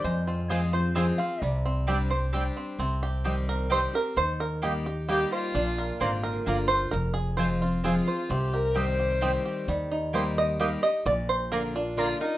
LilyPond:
<<
  \new Staff \with { instrumentName = "Resonator guitar played with a steel bar" } { \time 3/4 \key c \minor \tempo 4 = 131 c''8 f'8 aes'8 c''8 c''8 f''8 | d''8 r2 r8 | r2. | r2. |
r2. | r2. | r2. | r2. |
r2. | }
  \new Staff \with { instrumentName = "Mandolin" } { \time 3/4 \key c \minor r4 <c' f' c'' aes''>8 r8 <c' f' c'' aes''>8 r8 | r4 <c' g' d'' g''>8 r8 <c' g' d'' g''>8 r8 | r4 <c' g' ees'' g''>8 r8 <c' g' ees'' g''>8 r8 | r4 <bes g' ees'' g''>8 r8 <bes g' ees'' g''>8 r8 |
r4 <bes f' d'' bes''>8 r8 <bes f' d'' bes''>8 r8 | r4 <c' f' c'' aes''>8 r8 <c' f' c'' aes''>8 r8 | r4 <c' g' ees'' g''>8 r8 <c' g' ees'' g''>8 r8 | r4 <bes g' ees'' g''>8 r8 <bes g' ees'' g''>8 r8 |
r4 <bes f' d'' bes''>8 r8 <bes f' d'' bes''>8 r8 | }
  \new Staff \with { instrumentName = "Five-string banjo" } { \time 3/4 \key c \minor << { r2. | r2. | r8 g'4 bes'8 c''8 bes'8 | c''8 bes'8 g'4 r4 |
r4. bes'4 c''8 | bes'8 aes'8 c''4. r8 | r2. | r4. ees''4 ees''8 |
d''8 c''8 bes'4. r8 | } \\ { aes8 c'8 aes'8 c''8 aes'8 c'8 | g8 c'8 g'8 c''8 g'8 c'8 | c'4 g'4. r8 | r4. g'8 g'8 c''8 |
d'8 bes'8 c''4 bes'4 | r4. f'8 aes'8 c''8 | c'8 g'8 g'8 g'8 c'8 g'8 | g8 ees'8 c''4 g'4 |
r4. d'8 f'8 bes'8 | } >> }
  \new Staff \with { instrumentName = "Fiddle" } { \time 3/4 \key c \minor r2. | r2. | r2. | r2 g'8 f'8~ |
f'4~ f'16 r4. r16 | r2 f'4 | g'8 bes'8 c''2 | r2. |
r2 f'8 ees'8 | }
  \new Staff \with { instrumentName = "Steel-string acoustic guitar" } { \time 3/4 \key c \minor << { r4 <f aes c' f'>8 <c' f'>8 <f aes c' f'>8 <c' f'>8 | r4 <g c' d' g'>8 <d' g'>8 <g c' d' g'>4 | r4 <ees g c' g'>4 <ees g c' g'>8 <c' g'>8 | r4 <g bes ees' g'>8 <ees' g'>8 <g bes ees' g'>4 |
r4 <d bes d' f'>4 <d bes d' f'>8 <d' f'>8 | r4 <f aes c' f'>8 <c' f'>8 <f aes c' f'>8 <c' f'>8 | r4 <ees g c' g'>4 <ees g c' g'>4 | r4 <g bes ees' g'>4 <g bes ees' g'>8 <ees' g'>8 |
r4 <d bes d' f'>8 <d' f'>8 <d bes d' f'>8 <d' f'>8 | } \\ { f,2 r4 | c2 r4 | c2 r4 | ees2 r4 |
bes,2 r4 | f,2 r4 | c2 r4 | ees2 r4 |
bes,2 r4 | } >> }
  \new Staff \with { instrumentName = "Upright bass" } { \clef bass \time 3/4 \key c \minor f,2. | c,2. | c,2. | ees,2. |
bes,,4 aes,,4 g,,4 | f,,2. | c,2. | ees,2. |
bes,,2. | }
>>